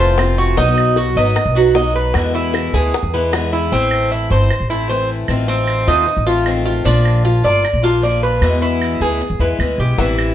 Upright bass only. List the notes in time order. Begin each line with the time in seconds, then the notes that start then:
Already playing: F1
0.57 B1
1.16 G#1
1.46 B1
2.15 E2
2.73 D2
3.03 E2
3.72 A1
4.31 G1
4.60 A1
5.28 A1
5.87 D#2
6.17 A1
6.85 A#1
7.44 G1
7.73 A#1
8.41 E2
9.01 D2
9.30 E2
9.39 E2
9.59 D2
9.78 B1
9.98 A1